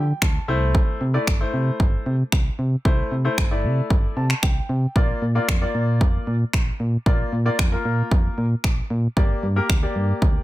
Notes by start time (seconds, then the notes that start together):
Already playing: D3 G5
0.22 D2 A5, finger snap, kick
0.48 C2 A3 E4 C5 E5
0.75 kick
1.01 C3
1.14 A3 E4 D5
1.27 G1, finger snap, kick
1.40 A3 E4 C5
1.54 C3
1.80 G1, kick
2.06 C3
2.32 C2, finger snap, kick
2.59 C3
2.85 C2 A3 E4 C5, kick
3.12 C3
3.25 A3 E4 C5
3.38 G1, finger snap, kick
3.51 A3 E4 D5
3.64 C3
3.90 G1, kick
4.17 C3 A5
4.30 finger snap
4.43 C2 G5, finger snap, kick
4.69 C3
4.95 A#1 A#3 F4 D5, kick
5.22 A#2
5.35 A#3 F4 D5
5.48 F2, finger snap, kick
5.61 A#3 F4 D5
5.75 A#2
6.01 F2, kick
6.27 A#2
6.53 A#1, finger snap, kick
6.80 A#2
7.06 A#1 A#3 F4 D5, kick
7.33 A#2
7.45 A#3 F4 D5
7.59 F2, finger snap, kick
7.72 A#3 F4 A#4
7.85 A#2
8.11 F2, kick
8.38 A#2
8.64 A#1, finger snap, kick
8.90 A#2
9.17 G1 A#3 G4 D5, kick
9.43 G2
9.56 A#3 G4 A#4
9.70 D2, finger snap, kick
9.82 A#3 G4 D5
9.96 G2
10.22 D2, kick